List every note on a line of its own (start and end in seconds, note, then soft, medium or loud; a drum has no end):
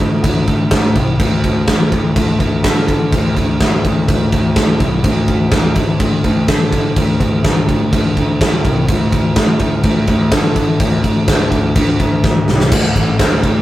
0.00 0.23 D2 medium
0.00 kick medium
0.00 crash medium
0.23 0.47 D2 loud
0.23 kick loud
0.23 crash medium
0.47 0.71 D2 medium
0.47 kick medium
0.47 crash medium
0.71 0.95 D2 medium
0.71 kick loud
0.71 snare loud
0.71 crash medium
0.96 1.19 C2 medium
0.96 kick medium
0.96 crash medium
1.20 1.66 D2 loud
1.20 kick loud
1.20 crash medium
1.44 kick medium
1.44 crash medium
1.68 1.91 D2 medium
1.68 kick loud
1.68 snare loud
1.68 crash medium
1.92 2.15 D2 medium
1.92 kick medium
1.92 crash medium
2.16 2.39 D2 loud
2.16 kick loud
2.16 crash medium
2.40 2.63 D2 loud
2.40 kick medium
2.40 crash medium
2.64 3.10 D3 medium
2.64 kick loud
2.64 snare loud
2.64 crash loud
2.88 kick loud
2.88 crash medium
3.12 3.35 D2 medium
3.12 kick loud
3.12 crash medium
3.37 3.60 D2 medium
3.37 kick medium
3.37 crash medium
3.60 3.83 D2 medium
3.60 kick loud
3.60 snare loud
3.60 crash medium
3.85 4.07 D2 medium
3.85 kick medium
3.85 crash medium
4.08 4.31 D2 loud
4.08 kick loud
4.08 crash medium
4.32 4.56 D2 loud
4.32 kick medium
4.32 crash medium
4.56 4.79 D2 medium
4.56 kick loud
4.56 snare loud
4.56 crash medium
4.80 5.03 C2 loud
4.80 kick medium
4.80 crash medium
5.04 5.50 D2 medium
5.04 kick loud
5.04 crash medium
5.28 kick medium
5.28 crash medium
5.52 5.75 D2 medium
5.52 kick loud
5.52 snare loud
5.52 crash medium
5.75 5.99 D2 medium
5.75 kick loud
5.75 crash medium
6.00 6.23 D2 loud
6.00 kick loud
6.00 crash medium
6.24 6.47 D2 loud
6.24 kick medium
6.24 crash medium
6.48 6.94 D3 loud
6.48 kick loud
6.48 snare loud
6.48 crash medium
6.73 kick loud
6.73 crash medium
6.96 7.20 D2 loud
6.96 kick loud
6.96 crash medium
7.20 7.43 D2 loud
7.20 kick medium
7.20 crash medium
7.44 7.67 D2 medium
7.44 kick loud
7.44 snare loud
7.44 crash medium
7.68 7.91 D2 loud
7.68 kick loud
7.68 crash medium
7.93 8.16 D2 medium
7.93 kick loud
7.93 crash medium
8.17 8.40 D2 loud
8.17 kick medium
8.17 crash medium
8.41 8.64 D2 medium
8.41 kick loud
8.41 snare loud
8.41 crash medium
8.65 8.88 C2 medium
8.65 kick loud
8.65 crash medium
8.88 9.34 D2 medium
8.88 kick loud
8.88 crash medium
9.12 kick loud
9.12 crash medium
9.36 9.60 D2 loud
9.36 kick loud
9.36 snare loud
9.36 crash medium
9.59 9.83 D2 medium
9.59 kick medium
9.59 crash medium
9.83 10.07 D2 loud
9.83 kick loud
9.83 crash medium
10.07 10.31 D2 loud
10.07 kick loud
10.07 crash medium
10.32 10.78 D3 loud
10.32 kick loud
10.32 snare loud
10.32 crash loud
10.56 kick medium
10.56 crash medium
10.80 11.03 D2 medium
10.80 kick loud
10.80 crash medium
11.04 11.27 D2 medium
11.04 kick medium
11.04 crash medium
11.28 11.51 D2 loud
11.28 kick loud
11.28 snare loud
11.28 crash medium
11.51 11.75 D2 medium
11.51 kick medium
11.51 crash medium
11.75 11.99 D2 loud
11.75 kick loud
11.75 crash medium
12.00 12.23 D2 loud
12.00 kick loud
12.00 crash medium
12.24 12.47 D2 loud
12.24 kick loud
12.24 snare medium
12.48 12.71 C2 medium
12.48 snare medium
12.60 snare loud
12.72 12.93 D2 loud
12.72 kick loud
12.72 crash loud
12.72 crash medium
12.96 13.16 A1 loud
12.96 kick medium
12.96 crash medium
13.19 13.40 D2 loud
13.19 kick loud
13.19 snare loud
13.19 crash medium
13.43 13.62 D2 loud
13.43 kick medium
13.43 crash medium